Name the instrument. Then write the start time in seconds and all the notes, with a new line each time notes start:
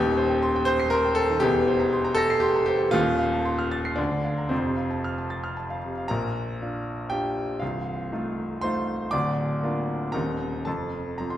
grand piano
Already playing: D#1 D#2 G4
0.06 D#3
0.17 C5
0.30 G5
0.43 C6
0.56 G5
0.65 C5 G6
0.80 C7
0.90 A#4 C6
1.05 G5
1.15 A4 C5
1.30 D#3
1.40 E1 E2 G4
1.55 E3
1.68 C5
1.80 A#5
1.93 C6
2.05 A#5
2.15 A4 A#6
2.30 C7
2.40 G4 C6
2.56 A#5
2.66 G4 C5
2.81 E3
2.91 D#1 D#2 F4
3.06 D#3
3.19 F5
3.33 A5
3.45 C6
3.59 F6
3.72 A6
3.85 C7
3.96 D2 D4
4.11 D3
4.24 F5
4.38 A#5
4.49 F1 F2 C4
4.64 C3
4.77 F5
4.91 A5
5.04 F6
5.18 A5
5.30 A6
5.44 F6
5.57 A5
5.70 F5
5.84 C3
5.98 F5
6.08 A#1 A#2 A#4 A#5
6.62 D4 F4
7.10 D4 F4 G4 G5
7.60 C1 C2 F4 F5
8.12 A3 D#4 F4
8.61 A3 D#4 F4 C5 C6
9.11 D1 D2 D5 D6
9.63 A#3 D4 F4
10.12 D#1 D#2 G3 C4 D#4 A#4 A#5
10.65 F1 F2 A4 A5
11.18 F3 C4 A#5
11.30 C6